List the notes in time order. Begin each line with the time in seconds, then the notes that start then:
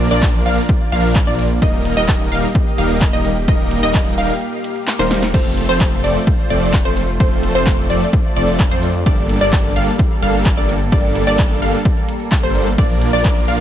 Already playing: A#3 F4 D5
0.11 A#1 F3 A#3 D4 A#4 D5, clap, closed hi-hat
0.22 kick, clap, closed hi-hat
0.46 A#1 F3 A#3 D4 A#4 F5, open hi-hat, ride
0.57 closed hi-hat
0.69 kick, closed hi-hat
0.92 A#1 F3 A#3 D4 A#4 F5, open hi-hat, ride
1.04 closed hi-hat
1.15 kick, clap, closed hi-hat
1.27 A#1 F3 A#3 D4 A#4 D5, closed hi-hat
1.39 open hi-hat, ride
1.50 closed hi-hat
1.62 D#1 G3 A#3 D#4 G4 A#4 D#5, kick, closed hi-hat
1.74 closed hi-hat
1.85 open hi-hat, ride
1.97 D#1 G3 A#3 D#4 A#4 D#5, closed hi-hat
2.08 kick, clap, closed hi-hat
2.32 D#1 G3 A#3 D#4 A#4 F5, open hi-hat, ride
2.43 closed hi-hat
2.55 kick, closed hi-hat
2.78 D#1 G3 A#3 D#4 A#4 F5, open hi-hat, ride
2.90 closed hi-hat
3.01 kick, clap, closed hi-hat
3.13 D#1 G3 A#3 D#4 A#4 D#5, closed hi-hat
3.25 open hi-hat, ride
3.37 closed hi-hat
3.48 D#1 G3 A#3 D#4 A#4 D#5 F5, kick, closed hi-hat
3.60 closed hi-hat
3.71 open hi-hat, ride
3.83 D#1 G3 A#3 D#4 A#4 D#5, clap, closed hi-hat
3.94 kick, clap, closed hi-hat
4.06 closed hi-hat
4.18 D#1 G3 A#3 D#4 A#4 F5, open hi-hat, ride
4.29 closed hi-hat
4.41 closed hi-hat
4.53 closed hi-hat
4.64 open hi-hat, ride
4.76 closed hi-hat
4.87 snare, clap, closed hi-hat
4.99 D#1 G3 A#3 D#4 A#4 C5, snare, closed hi-hat
5.11 snare, open hi-hat, ride
5.23 snare, closed hi-hat
5.34 F1 F3 A3 C4 F4 A4 C5, kick, closed hi-hat, crash
5.46 closed hi-hat
5.57 open hi-hat, ride
5.69 F1 F3 A3 C4 A4 C5, closed hi-hat
5.80 kick, clap, closed hi-hat
5.92 closed hi-hat
6.04 F1 F3 A3 C4 A4 D5, open hi-hat, ride
6.16 closed hi-hat
6.27 kick, closed hi-hat
6.39 closed hi-hat
6.50 F1 F3 A3 C4 A4 D5, open hi-hat, ride
6.62 closed hi-hat
6.74 kick, clap, closed hi-hat
6.85 F1 F3 A3 C4 A4 C5, closed hi-hat
6.97 open hi-hat, ride
7.09 closed hi-hat
7.20 F1 F3 A3 C4 A4 C5 D5, kick, closed hi-hat
7.32 closed hi-hat
7.43 open hi-hat, ride
7.55 F1 F3 A3 C4 A4 C5, clap, closed hi-hat
7.67 kick, clap, closed hi-hat
7.78 closed hi-hat
7.90 F1 F3 A3 C4 A4 D5, open hi-hat, ride
8.02 closed hi-hat
8.13 kick, closed hi-hat
8.25 closed hi-hat
8.36 F1 F3 A3 C4 A4 D5, open hi-hat, ride
8.48 closed hi-hat
8.60 kick, clap, closed hi-hat
8.71 F2 F3 A3 C4 A4 C5, closed hi-hat
8.83 open hi-hat, ride
8.95 closed hi-hat
9.06 G1 G3 A#3 D4 A4 D5, kick, closed hi-hat
9.18 closed hi-hat
9.30 open hi-hat, ride
9.41 G1 G3 A#3 D4 A4 D5, closed hi-hat
9.53 kick, clap, closed hi-hat
9.64 closed hi-hat
9.76 G1 G3 A#3 D4 A4 F5, open hi-hat, ride
9.88 closed hi-hat
9.99 kick, closed hi-hat
10.11 closed hi-hat
10.22 G1 G3 A#3 D4 A4 F5, open hi-hat, ride
10.34 closed hi-hat
10.46 kick, clap, closed hi-hat
10.57 G1 G3 A#3 D4 A4 D5, closed hi-hat
10.69 open hi-hat, ride
10.81 closed hi-hat
10.92 G1 G3 A#3 D4 A4 D5, kick, closed hi-hat
11.04 closed hi-hat
11.16 open hi-hat, ride
11.27 G1 G3 A#3 D4 A4 D5, clap, closed hi-hat
11.39 kick, clap, closed hi-hat
11.50 closed hi-hat
11.62 G1 G3 A#3 D4 A4 F5, open hi-hat, ride
11.74 closed hi-hat
11.85 kick, closed hi-hat
11.97 closed hi-hat
12.09 open hi-hat, ride
12.20 closed hi-hat
12.32 kick, clap, closed hi-hat
12.43 G1 G3 A#3 D4 A4 C5, closed hi-hat
12.55 open hi-hat, ride
12.67 closed hi-hat
12.78 A#1 F3 A#3 D4 F4 A#4 D5, kick, closed hi-hat
12.90 closed hi-hat
13.02 open hi-hat, ride
13.13 A#1 F3 A#3 D4 A#4 D5, closed hi-hat
13.25 kick, clap, closed hi-hat
13.37 closed hi-hat
13.48 A#1 F3 A#3 D4 A#4 F5, open hi-hat, ride